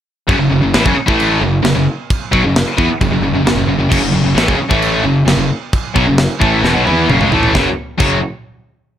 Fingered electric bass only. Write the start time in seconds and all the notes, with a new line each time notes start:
0.29 F#1
0.39 F#1
0.51 F#1
0.64 F#1
0.75 A1
0.86 F#1
0.97 muted fingered electric bass stroke
1.09 A1
1.41 F#1
1.64 F#1
1.76 F#1
2.33 B1
2.44 F#1
2.78 E2
2.88 muted fingered electric bass stroke
3.01 F#1
3.10 F#1
3.21 F#1
3.32 F#1
3.44 F#1
3.55 F#1
3.67 F#1
3.78 F#1
3.91 F#1
4.02 F#1
4.14 F#1
4.24 F#1
4.36 A1
4.48 F#1
4.60 muted fingered electric bass stroke
4.71 A1
5.03 F#1
5.27 F#1
5.37 F#1
5.96 B1
6.07 F#1
6.42 A1
6.64 E1
6.75 B1
6.88 E2
7.09 F#1
7.20 C#2
7.31 A1
7.55 F#1
8.00 F#1